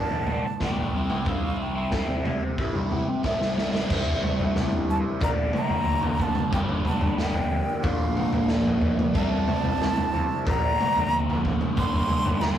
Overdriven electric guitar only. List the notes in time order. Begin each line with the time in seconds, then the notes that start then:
Already playing: A#2 D3 F3 A#3 D4
0.12 F3 A#3 D4
0.29 D3 F3 A#3 D4
0.46 muted overdriven electric guitar stroke
0.61 A#2 D3 F3 A#3 D4
0.95 C3 G3 C4 E4
1.10 G3 C4 E4
1.26 C3 G3 C4 E4
1.75 G3 C4 E4
2.23 C3 G3 C4 E4
2.43 muted overdriven electric guitar stroke
2.60 C3 G3 C4 E4
2.76 G3 C4 E4
2.92 C3 G3 C4 E4
3.09 muted overdriven electric guitar stroke
3.23 C3 G3 C4 E4
3.57 C3 G3 C4 E4
3.71 G3 C4 E4
3.88 C3 G3 C4 E4
5.20 A#2 D3 F3 A#3 D4
6.51 G2 D3 G3 A#3 D4
7.82 A#2 D3 F3 A#3 D4
9.14 C3 G3 C4 E4
10.45 A#2 D3 F3 A#3 D4
11.77 G2 D3 G3 A#3 D4